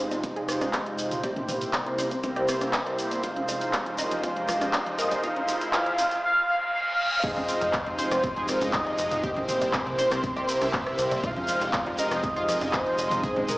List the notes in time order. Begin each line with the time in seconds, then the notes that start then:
Already playing: F2 C3 G#3 D#4 F4 G4 C5, riser
0.00 C5
0.11 C4, closed hi-hat, high bongo, shekere
0.23 C4, kick, closed hi-hat, shekere
0.36 G#4, closed hi-hat, high bongo
0.48 G#3 C4 D#4 F4 C5, cross-stick, open hi-hat, shekere
0.61 cross-stick, closed hi-hat, high bongo, high conga, shekere
0.73 D#5, kick, clap, closed hi-hat, shekere
0.86 closed hi-hat, high bongo
0.99 open hi-hat, shekere
1.11 closed hi-hat, mid tom, shekere
1.23 C2 G3 A#3 E4 G4 A#4 C5, kick, closed hi-hat, high bongo, shekere
1.36 C4, closed hi-hat, mid tom, high conga
1.48 C4 C5, mid tom, open hi-hat, high bongo, shekere
1.61 closed hi-hat, shekere
1.73 C4, kick, clap, closed hi-hat, high bongo, shekere
1.86 C4, closed hi-hat
1.98 C5, open hi-hat, high bongo, high conga, shekere
2.11 C4, kick, closed hi-hat, shekere
2.23 C4, kick, closed hi-hat, shekere
2.36 G4, closed hi-hat, high bongo
2.48 A#3 C4 E4 G4 C5, cross-stick, open hi-hat, shekere
2.61 cross-stick, closed hi-hat, high bongo, high conga, shekere
2.73 kick, clap, closed hi-hat, shekere
2.86 closed hi-hat, high bongo
2.99 open hi-hat, shekere
3.11 closed hi-hat, high bongo, shekere
3.23 F2 G#3 D#4 F4 G4 C5 D#5 F5, kick, closed hi-hat, shekere
3.36 F3, closed hi-hat, high conga
3.48 F3, open hi-hat, high bongo, shekere
3.61 closed hi-hat, shekere
3.73 F3, kick, clap, closed hi-hat, high bongo, shekere
3.86 F3, closed hi-hat
3.98 A#4 D#5, open hi-hat, high bongo, high conga, shekere
4.11 F3, closed hi-hat, shekere
4.24 G#3 D#4 F4 C5 F5, kick, closed hi-hat, high bongo, shekere
4.36 F3, closed hi-hat
4.48 F3, cross-stick, open hi-hat, shekere
4.61 cross-stick, closed hi-hat, high bongo, high conga, shekere
4.73 F3, kick, clap, closed hi-hat, shekere
4.86 F3, closed hi-hat, high bongo
4.99 A#4 D#5, open hi-hat, shekere
5.11 F3, closed hi-hat, mid tom, high bongo, shekere
5.24 G#2 D#3 G#3 C4 D#4 F4 G#4 C5 F5, kick, closed hi-hat, shekere
5.36 F3, closed hi-hat, mid tom, high bongo, high conga
5.48 F3, mid tom, open hi-hat, shekere
5.61 closed hi-hat, shekere
5.73 G#3 D#4 F4 C5 F5, kick, clap, closed hi-hat, high bongo, shekere
5.86 F3, closed hi-hat
5.98 F3, open hi-hat, high bongo, high conga, shekere
6.11 kick, closed hi-hat, shekere
6.24 F5, reverse cymbal
6.49 F5
6.74 F5
6.99 F5
7.23 F3 G#3 C4 D#4 F4 G4 G#4 C5 D#5, kick, closed hi-hat, crash, shekere
7.36 F1 C4, closed hi-hat, high bongo, high conga
7.49 C4, open hi-hat, shekere
7.61 F1, closed hi-hat, shekere
7.73 C4, kick, clap, closed hi-hat, high bongo, shekere
7.86 F1 C4, closed hi-hat
7.99 C5, open hi-hat, high conga, shekere
8.11 F1 C4, cross-stick, closed hi-hat, high bongo, shekere
8.23 C4, kick, closed hi-hat, shekere
8.36 F1 G#4, closed hi-hat
8.48 G#3 C4 D#4 F4 A#4, cross-stick, open hi-hat, high bongo, shekere
8.61 F1 G#3 D#4 F4 D#5, closed hi-hat, high conga, shekere
8.73 D#5, kick, clap, closed hi-hat, shekere
8.86 closed hi-hat, high bongo
8.98 F1, open hi-hat, shekere
9.11 F1, closed hi-hat, mid tom, shekere
9.24 C3 A#3 C4 E4 G4 A#4 C5, kick, closed hi-hat, high bongo, shekere
9.36 C2 C4, closed hi-hat, mid tom, high conga
9.48 C4 C5, mid tom, open hi-hat, shekere
9.61 C2, closed hi-hat, high bongo, shekere
9.73 C4, kick, clap, closed hi-hat, shekere
9.86 C2 C4, closed hi-hat
9.99 C5, open hi-hat, high bongo, high conga, shekere
10.11 C2 C4, cross-stick, closed hi-hat, shekere
10.23 C4, kick, closed hi-hat, shekere
10.36 C2 G4, closed hi-hat, high bongo
10.48 A#3 C4 E4 G4 A#4, open hi-hat, shekere
10.61 C2 A#3 E4 G4 E5, cross-stick, closed hi-hat, high conga, shekere
10.73 kick, clap, closed hi-hat, high bongo, shekere
10.87 cross-stick, closed hi-hat
10.98 C2, open hi-hat, shekere
11.11 C2, closed hi-hat, high bongo, shekere
11.23 F3 G#3 D#4 F4 G4 G#4 C5 F5, kick, closed hi-hat, shekere
11.36 F1 F3, closed hi-hat, high conga
11.48 F3, open hi-hat, high bongo, shekere
11.61 F1, closed hi-hat, shekere
11.73 F3, kick, clap, closed hi-hat, shekere
11.86 F1 F3, closed hi-hat, high bongo
11.98 A#4 D#5, open hi-hat, high conga, shekere
12.11 F1 F3, cross-stick, closed hi-hat, shekere
12.23 F3, kick, closed hi-hat, high bongo, shekere
12.36 F1 F4, closed hi-hat
12.48 F3 G#3 D#4 F4 A#4, cross-stick, open hi-hat, shekere
12.61 F1 G#3 D#4 F4 D#5, closed hi-hat, high bongo, high conga, shekere
12.73 C5, kick, clap, closed hi-hat, shekere
12.86 closed hi-hat
12.98 F1, open hi-hat, high bongo, shekere
13.11 F1, closed hi-hat, mid tom, shekere
13.23 G#3 C4 D#4 G#4 D#5, kick, closed hi-hat, shekere
13.36 G#1 G#3, closed hi-hat, mid tom, high bongo, high conga
13.48 G#3 A#4, mid tom, open hi-hat, shekere